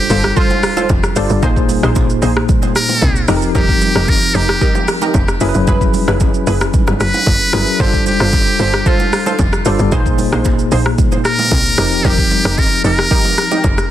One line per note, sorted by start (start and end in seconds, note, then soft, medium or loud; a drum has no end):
0.00 0.16 G3 medium
0.00 0.16 D4 medium
0.00 0.16 F4 medium
0.00 0.39 G4 loud
0.00 0.16 A4 medium
0.00 0.16 C5 medium
0.00 impact medium
0.10 0.33 G1 loud
0.10 0.24 F4 medium
0.10 0.24 A4 medium
0.10 0.24 C5 medium
0.10 open hi-hat soft
0.10 shaker medium
0.24 cross-stick loud
0.36 0.73 F4 loud
0.36 0.90 F4 medium
0.36 0.74 A4 medium
0.36 0.74 C5 loud
0.36 kick loud
0.36 low conga medium
0.36 shaker medium
0.50 low bongo medium
0.50 shaker soft
0.63 cross-stick loud
0.63 open hi-hat medium
0.63 shaker medium
0.77 0.90 F4 medium
0.77 0.90 A4 medium
0.77 0.90 C5 medium
0.77 low bongo medium
0.77 shaker medium
0.89 1.13 F1 loud
0.89 kick medium
0.89 high bongo medium
0.89 shaker medium
1.03 cross-stick medium
1.03 shaker medium
1.16 1.28 G1 medium
1.16 1.38 G3 medium
1.16 1.38 D4 medium
1.16 1.30 F4 medium
1.16 1.38 F4 medium
1.16 1.30 A4 medium
1.16 1.38 A4 medium
1.16 1.30 C5 medium
1.16 1.38 D5 loud
1.16 open hi-hat medium
1.16 shaker loud
1.30 1.41 G1 medium
1.30 shaker medium
1.42 1.78 A#1 loud
1.42 2.28 A#2 medium
1.42 2.28 A#3 medium
1.42 1.57 D#4 loud
1.42 2.28 D#4 medium
1.42 1.57 G#4 medium
1.42 2.28 G#4 medium
1.42 1.57 C5 loud
1.42 2.29 C5 loud
1.42 kick loud
1.42 low conga medium
1.42 shaker medium
1.56 kick loud
1.56 shaker medium
1.69 open hi-hat medium
1.69 low bongo medium
1.69 low conga medium
1.69 shaker loud
1.83 2.18 A#1 loud
1.83 1.96 D#4 medium
1.83 1.96 G#4 medium
1.83 1.96 C5 medium
1.83 cross-stick loud
1.83 shaker medium
1.95 kick loud
1.95 high bongo medium
1.95 shaker medium
2.10 shaker medium
2.22 2.46 A#1 loud
2.22 2.36 D#4 medium
2.22 2.36 G#4 medium
2.22 2.36 C5 medium
2.22 open hi-hat medium
2.22 shaker medium
2.37 cross-stick loud
2.49 kick loud
2.49 low conga medium
2.49 shaker medium
2.62 low bongo medium
2.62 shaker medium
2.76 3.25 A#4 loud
2.76 cross-stick loud
2.76 open hi-hat medium
2.76 shaker medium
2.89 low bongo medium
2.89 shaker medium
3.02 3.25 C2 loud
3.02 kick medium
3.02 high bongo medium
3.02 shaker medium
3.16 shaker medium
3.28 3.52 F1 loud
3.28 4.14 F3 medium
3.28 4.14 C4 medium
3.28 3.43 D#4 medium
3.28 4.14 D#4 medium
3.28 3.43 G4 medium
3.28 4.14 G4 medium
3.28 3.36 A4 medium
3.28 3.43 A#4 medium
3.28 cross-stick loud
3.28 open hi-hat medium
3.28 shaker loud
3.37 4.18 A#4 medium
3.42 shaker medium
3.55 3.91 F1 loud
3.55 3.69 D#4 loud
3.55 3.69 G4 medium
3.55 4.11 G4 loud
3.55 3.69 A#4 loud
3.55 kick loud
3.55 low conga medium
3.55 shaker medium
3.69 kick loud
3.69 shaker medium
3.81 open hi-hat medium
3.81 low bongo medium
3.81 low conga medium
3.81 shaker loud
3.95 4.30 F1 loud
3.95 4.08 D#4 medium
3.95 4.09 G4 medium
3.95 4.09 A#4 medium
3.95 cross-stick loud
3.95 shaker medium
4.08 4.37 A#4 loud
4.08 kick loud
4.08 high bongo medium
4.08 shaker medium
4.22 shaker soft
4.34 4.58 F1 loud
4.34 4.49 D#4 medium
4.34 4.49 G4 medium
4.34 4.88 G4 loud
4.34 4.49 A#4 medium
4.34 open hi-hat soft
4.34 shaker medium
4.49 cross-stick loud
4.61 4.98 D#4 loud
4.61 4.98 G4 medium
4.61 4.99 A#4 loud
4.61 kick loud
4.61 low conga medium
4.61 shaker medium
4.75 low bongo medium
4.75 shaker soft
4.88 cross-stick loud
4.88 open hi-hat medium
4.88 shaker medium
5.02 5.15 D#4 medium
5.02 5.15 G4 medium
5.02 5.15 A#4 medium
5.02 low bongo medium
5.02 shaker medium
5.14 5.38 F1 loud
5.14 kick medium
5.14 high bongo medium
5.14 shaker medium
5.28 cross-stick medium
5.28 shaker medium
5.41 5.53 F#1 loud
5.41 6.26 F#3 loud
5.41 6.26 C#4 medium
5.41 5.55 E4 medium
5.41 6.26 E4 medium
5.41 5.55 G#4 medium
5.41 6.27 G#4 medium
5.41 5.48 A#4 medium
5.41 5.55 B4 medium
5.41 open hi-hat medium
5.41 shaker loud
5.49 6.30 B4 loud
5.54 5.66 F#1 medium
5.54 shaker medium
5.67 6.03 F#1 loud
5.67 5.82 E4 loud
5.67 5.82 G#4 medium
5.67 5.82 B4 loud
5.67 kick loud
5.67 low conga medium
5.67 shaker medium
5.81 kick loud
5.81 shaker medium
5.94 open hi-hat medium
5.94 low conga medium
5.94 shaker loud
6.08 6.42 F#1 loud
6.08 6.21 E4 medium
6.08 6.21 G#4 medium
6.08 6.21 B4 medium
6.08 cross-stick loud
6.08 low bongo medium
6.08 shaker medium
6.20 kick loud
6.20 high bongo medium
6.20 shaker medium
6.34 shaker medium
6.47 6.70 F#1 loud
6.47 6.61 E4 medium
6.47 6.61 G#4 medium
6.47 6.61 B4 medium
6.47 open hi-hat soft
6.47 shaker medium
6.61 cross-stick loud
6.61 shaker medium
6.74 kick loud
6.74 low conga medium
6.74 shaker medium
6.87 6.99 G1 medium
6.87 cross-stick medium
6.87 low bongo medium
6.87 shaker soft
7.00 7.12 F#1 medium
7.00 7.82 B4 loud
7.00 cross-stick medium
7.00 open hi-hat medium
7.00 shaker medium
7.14 low bongo medium
7.14 shaker medium
7.26 7.39 F#1 loud
7.26 kick medium
7.26 high bongo medium
7.26 shaker medium
7.40 shaker medium
7.53 7.66 G1 loud
7.53 7.75 F#3 medium
7.53 7.75 C#4 medium
7.53 7.67 E4 medium
7.53 7.75 E4 medium
7.53 7.67 G#4 medium
7.53 7.76 G#4 medium
7.53 7.76 A#4 medium
7.53 7.68 B4 medium
7.53 cross-stick loud
7.53 open hi-hat medium
7.53 shaker loud
7.67 shaker medium
7.80 8.15 G1 loud
7.80 8.65 G3 medium
7.80 8.65 D4 medium
7.80 7.94 F4 medium
7.80 8.66 F4 medium
7.80 8.07 G4 loud
7.80 7.94 A4 medium
7.80 8.66 A4 medium
7.80 7.94 C5 loud
7.80 8.66 C5 medium
7.80 kick loud
7.80 low conga medium
7.80 shaker medium
7.93 kick loud
7.93 shaker medium
8.06 8.89 G4 loud
8.06 open hi-hat medium
8.06 low bongo medium
8.06 low conga medium
8.06 shaker loud
8.20 8.55 G1 loud
8.20 8.33 F4 medium
8.20 8.33 A4 medium
8.20 8.33 C5 medium
8.20 cross-stick medium
8.20 shaker medium
8.32 kick loud
8.32 high bongo medium
8.32 shaker medium
8.47 shaker medium
8.59 8.83 G1 loud
8.59 8.73 F4 medium
8.59 8.73 A4 medium
8.59 8.74 C5 medium
8.59 open hi-hat soft
8.59 shaker medium
8.74 cross-stick loud
8.86 9.23 F4 loud
8.86 9.40 F4 medium
8.86 9.23 A4 medium
8.86 9.23 C5 loud
8.86 kick loud
8.86 low conga medium
8.86 shaker medium
9.00 low bongo medium
9.00 shaker soft
9.13 cross-stick medium
9.13 open hi-hat soft
9.13 shaker medium
9.26 9.39 F4 medium
9.26 9.39 A4 medium
9.26 9.40 C5 medium
9.26 low bongo medium
9.26 shaker medium
9.39 9.63 F1 loud
9.39 kick medium
9.39 high bongo medium
9.39 shaker medium
9.53 cross-stick loud
9.53 shaker medium
9.65 9.78 G1 loud
9.65 9.87 G3 medium
9.65 9.87 D4 medium
9.65 9.80 F4 medium
9.65 9.88 F4 medium
9.65 9.80 A4 medium
9.65 9.88 A4 medium
9.65 9.80 C5 medium
9.65 9.88 D5 loud
9.65 open hi-hat medium
9.65 shaker loud
9.79 9.91 G1 medium
9.79 shaker medium
9.92 10.28 A#1 loud
9.92 10.77 A#2 medium
9.92 10.78 A#3 medium
9.92 10.06 D#4 loud
9.92 10.06 G#4 medium
9.92 10.78 G#4 medium
9.92 10.00 B4 medium
9.92 10.06 C5 loud
9.92 kick loud
9.92 low conga medium
9.92 shaker medium
10.00 10.81 C5 loud
10.06 kick loud
10.06 shaker medium
10.18 open hi-hat medium
10.18 low bongo medium
10.18 low conga medium
10.18 shaker loud
10.32 10.67 A#1 loud
10.32 10.45 D#4 medium
10.32 10.46 G#4 medium
10.32 10.46 C5 medium
10.32 cross-stick loud
10.32 shaker medium
10.45 kick loud
10.45 high bongo medium
10.45 shaker medium
10.59 shaker medium
10.72 10.95 A#1 loud
10.72 10.86 D#4 medium
10.72 10.86 G#4 medium
10.72 10.86 C5 medium
10.72 open hi-hat soft
10.72 shaker medium
10.86 cross-stick medium
10.98 kick loud
10.98 low conga medium
10.98 shaker medium
11.12 low bongo medium
11.12 shaker soft
11.25 12.07 A#4 loud
11.25 cross-stick loud
11.25 open hi-hat medium
11.25 shaker medium
11.39 low bongo medium
11.39 shaker medium
11.51 11.75 C2 loud
11.51 kick medium
11.51 high bongo medium
11.51 shaker medium
11.65 shaker medium
11.78 12.01 F1 loud
11.78 12.63 F3 medium
11.78 12.63 C4 medium
11.78 11.92 D#4 medium
11.78 12.64 D#4 medium
11.78 11.92 G4 medium
11.78 12.64 G4 medium
11.78 11.92 A#4 medium
11.78 12.64 A#4 medium
11.78 cross-stick loud
11.78 open hi-hat medium
11.78 shaker medium
11.92 shaker medium
12.05 12.40 F1 loud
12.05 12.19 D#4 loud
12.05 12.19 G4 medium
12.05 12.60 G4 loud
12.05 12.19 A#4 loud
12.05 kick loud
12.05 low conga medium
12.05 shaker medium
12.18 kick loud
12.18 shaker medium
12.31 open hi-hat medium
12.31 low bongo medium
12.31 low conga medium
12.31 shaker loud
12.45 12.80 F1 loud
12.45 12.58 D#4 medium
12.45 12.58 G4 medium
12.45 12.58 A#4 medium
12.45 cross-stick loud
12.45 shaker medium
12.58 12.84 A#4 loud
12.58 kick loud
12.58 high bongo medium
12.58 shaker medium
12.71 shaker medium
12.84 13.08 F1 loud
12.84 12.98 D#4 medium
12.84 12.99 G4 medium
12.84 12.99 A#4 medium
12.84 13.87 A#4 loud
12.84 open hi-hat soft
12.84 shaker medium
12.99 cross-stick loud
13.11 13.48 D#4 loud
13.11 13.48 G4 medium
13.11 13.48 A#4 loud
13.11 kick loud
13.11 low conga medium
13.11 shaker medium
13.25 low bongo medium
13.25 shaker soft
13.38 cross-stick medium
13.38 open hi-hat medium
13.38 shaker medium
13.51 13.64 D#4 medium
13.51 13.64 G4 medium
13.51 13.65 A#4 medium
13.51 low bongo medium
13.51 shaker medium
13.64 13.88 F1 loud
13.64 kick medium
13.64 high bongo medium
13.64 shaker medium
13.78 cross-stick medium
13.78 shaker medium